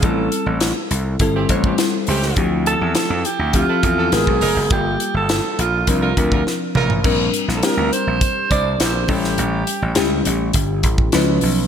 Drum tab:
CC |----------------|----------------|----------------|x---------------|
HH |x-x-x-x-x-x-x-o-|x-x-x-x-x-x-x-o-|x-x-x-x-x-x-----|--x-x-x-x-x-x-o-|
SD |----o-------o--o|----o-------o---|----o-------o---|---oo-------o--o|
T2 |----------------|----------------|--------------o-|----------------|
FT |----------------|----------------|---------------o|----------------|
BD |o-------o-oo----|o-------o-o--o--|o-------o-oo----|o-------o-o---o-|

CC |----------------|
HH |x-x-x-x-x-x-x-o-|
SD |----o-------o---|
T2 |----------------|
FT |----------------|
BD |--------o-oo----|